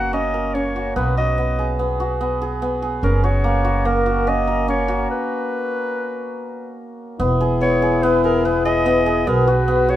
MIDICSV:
0, 0, Header, 1, 5, 480
1, 0, Start_track
1, 0, Key_signature, 5, "major"
1, 0, Tempo, 415512
1, 1112, Time_signature, 5, 2, 24, 8
1, 11509, End_track
2, 0, Start_track
2, 0, Title_t, "Clarinet"
2, 0, Program_c, 0, 71
2, 0, Note_on_c, 0, 78, 82
2, 147, Note_off_c, 0, 78, 0
2, 154, Note_on_c, 0, 75, 78
2, 629, Note_on_c, 0, 73, 73
2, 647, Note_off_c, 0, 75, 0
2, 1102, Note_off_c, 0, 73, 0
2, 1109, Note_on_c, 0, 71, 75
2, 1335, Note_off_c, 0, 71, 0
2, 1360, Note_on_c, 0, 75, 77
2, 2030, Note_off_c, 0, 75, 0
2, 3504, Note_on_c, 0, 70, 74
2, 3745, Note_on_c, 0, 73, 85
2, 3762, Note_off_c, 0, 70, 0
2, 4460, Note_on_c, 0, 70, 79
2, 4477, Note_off_c, 0, 73, 0
2, 4948, Note_on_c, 0, 75, 89
2, 4966, Note_off_c, 0, 70, 0
2, 5416, Note_off_c, 0, 75, 0
2, 5426, Note_on_c, 0, 73, 74
2, 5859, Note_off_c, 0, 73, 0
2, 5897, Note_on_c, 0, 71, 79
2, 7783, Note_off_c, 0, 71, 0
2, 8802, Note_on_c, 0, 73, 86
2, 9280, Note_on_c, 0, 71, 74
2, 9297, Note_off_c, 0, 73, 0
2, 9513, Note_off_c, 0, 71, 0
2, 9520, Note_on_c, 0, 70, 77
2, 9761, Note_on_c, 0, 71, 77
2, 9779, Note_off_c, 0, 70, 0
2, 9989, Note_off_c, 0, 71, 0
2, 9995, Note_on_c, 0, 75, 89
2, 10718, Note_on_c, 0, 70, 73
2, 10736, Note_off_c, 0, 75, 0
2, 10955, Note_on_c, 0, 71, 76
2, 10972, Note_off_c, 0, 70, 0
2, 11435, Note_on_c, 0, 73, 91
2, 11452, Note_off_c, 0, 71, 0
2, 11509, Note_off_c, 0, 73, 0
2, 11509, End_track
3, 0, Start_track
3, 0, Title_t, "French horn"
3, 0, Program_c, 1, 60
3, 8314, Note_on_c, 1, 64, 84
3, 10669, Note_off_c, 1, 64, 0
3, 10720, Note_on_c, 1, 66, 88
3, 11509, Note_off_c, 1, 66, 0
3, 11509, End_track
4, 0, Start_track
4, 0, Title_t, "Hammered dulcimer"
4, 0, Program_c, 2, 15
4, 0, Note_on_c, 2, 58, 66
4, 0, Note_on_c, 2, 61, 71
4, 0, Note_on_c, 2, 66, 59
4, 0, Note_on_c, 2, 68, 55
4, 145, Note_off_c, 2, 61, 0
4, 149, Note_on_c, 2, 61, 62
4, 391, Note_on_c, 2, 70, 60
4, 629, Note_off_c, 2, 61, 0
4, 633, Note_on_c, 2, 61, 60
4, 870, Note_off_c, 2, 66, 0
4, 875, Note_on_c, 2, 66, 56
4, 1109, Note_on_c, 2, 59, 72
4, 1178, Note_off_c, 2, 58, 0
4, 1178, Note_off_c, 2, 70, 0
4, 1351, Note_off_c, 2, 66, 0
4, 1355, Note_on_c, 2, 66, 56
4, 1588, Note_off_c, 2, 59, 0
4, 1592, Note_on_c, 2, 59, 58
4, 1829, Note_off_c, 2, 68, 0
4, 1833, Note_on_c, 2, 68, 59
4, 2067, Note_off_c, 2, 59, 0
4, 2072, Note_on_c, 2, 59, 64
4, 2305, Note_off_c, 2, 66, 0
4, 2309, Note_on_c, 2, 66, 61
4, 2545, Note_off_c, 2, 59, 0
4, 2549, Note_on_c, 2, 59, 66
4, 2786, Note_off_c, 2, 68, 0
4, 2791, Note_on_c, 2, 68, 63
4, 3022, Note_off_c, 2, 59, 0
4, 3027, Note_on_c, 2, 59, 69
4, 3257, Note_off_c, 2, 68, 0
4, 3262, Note_on_c, 2, 68, 63
4, 3499, Note_off_c, 2, 61, 0
4, 3503, Note_on_c, 2, 61, 69
4, 3734, Note_off_c, 2, 66, 0
4, 3738, Note_on_c, 2, 66, 65
4, 3974, Note_on_c, 2, 58, 66
4, 4044, Note_off_c, 2, 59, 0
4, 4207, Note_off_c, 2, 66, 0
4, 4212, Note_on_c, 2, 66, 59
4, 4445, Note_off_c, 2, 58, 0
4, 4450, Note_on_c, 2, 58, 71
4, 4686, Note_off_c, 2, 66, 0
4, 4690, Note_on_c, 2, 66, 61
4, 4928, Note_off_c, 2, 61, 0
4, 4933, Note_on_c, 2, 61, 64
4, 5168, Note_on_c, 2, 70, 60
4, 5404, Note_off_c, 2, 61, 0
4, 5408, Note_on_c, 2, 61, 65
4, 5636, Note_off_c, 2, 66, 0
4, 5640, Note_on_c, 2, 66, 69
4, 6763, Note_off_c, 2, 68, 0
4, 8312, Note_on_c, 2, 59, 83
4, 8381, Note_off_c, 2, 58, 0
4, 8381, Note_off_c, 2, 70, 0
4, 8555, Note_on_c, 2, 68, 61
4, 8790, Note_off_c, 2, 59, 0
4, 8795, Note_on_c, 2, 59, 62
4, 9031, Note_off_c, 2, 68, 0
4, 9036, Note_on_c, 2, 68, 64
4, 9274, Note_off_c, 2, 59, 0
4, 9278, Note_on_c, 2, 59, 74
4, 9394, Note_off_c, 2, 66, 0
4, 9514, Note_off_c, 2, 68, 0
4, 9519, Note_on_c, 2, 68, 59
4, 9758, Note_off_c, 2, 59, 0
4, 9763, Note_on_c, 2, 59, 62
4, 9872, Note_off_c, 2, 61, 0
4, 9992, Note_off_c, 2, 68, 0
4, 9997, Note_on_c, 2, 68, 68
4, 10229, Note_off_c, 2, 59, 0
4, 10234, Note_on_c, 2, 59, 77
4, 10463, Note_off_c, 2, 68, 0
4, 10468, Note_on_c, 2, 68, 71
4, 10704, Note_off_c, 2, 59, 0
4, 10709, Note_on_c, 2, 59, 78
4, 10945, Note_on_c, 2, 66, 62
4, 11176, Note_off_c, 2, 59, 0
4, 11181, Note_on_c, 2, 59, 69
4, 11415, Note_off_c, 2, 66, 0
4, 11419, Note_on_c, 2, 66, 62
4, 11509, Note_off_c, 2, 59, 0
4, 11509, Note_off_c, 2, 66, 0
4, 11509, Note_off_c, 2, 68, 0
4, 11509, End_track
5, 0, Start_track
5, 0, Title_t, "Upright bass"
5, 0, Program_c, 3, 32
5, 0, Note_on_c, 3, 30, 63
5, 1069, Note_off_c, 3, 30, 0
5, 1112, Note_on_c, 3, 35, 66
5, 3460, Note_off_c, 3, 35, 0
5, 3499, Note_on_c, 3, 30, 78
5, 5833, Note_off_c, 3, 30, 0
5, 8313, Note_on_c, 3, 28, 77
5, 10668, Note_off_c, 3, 28, 0
5, 10717, Note_on_c, 3, 35, 69
5, 11509, Note_off_c, 3, 35, 0
5, 11509, End_track
0, 0, End_of_file